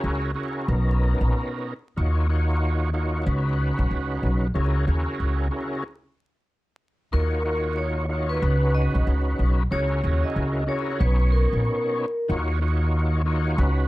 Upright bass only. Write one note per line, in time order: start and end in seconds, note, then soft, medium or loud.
0.04 0.32 C#2 medium
0.68 1.14 B1 loud
1.21 1.31 A#1 medium
1.98 3.22 D#2 medium
3.26 3.72 C#2 loud
3.79 3.89 B1 medium
3.91 4.19 C#2 loud
4.23 4.51 B1 medium
4.55 4.83 C#2 medium
4.88 5.05 D#2 medium
5.20 5.48 C#2 medium
7.13 8.38 D#2 loud
8.42 8.88 C#2 loud
8.95 9.05 B1 medium
9.07 9.35 C#2 loud
9.39 9.67 B1 medium
9.72 9.99 C#2 loud
10.04 10.21 D#2 medium
10.36 10.64 C#2 medium
11.01 11.46 B1 loud
11.53 11.63 A#1 medium
12.29 13.54 D#2 loud
13.58 13.88 C#2 loud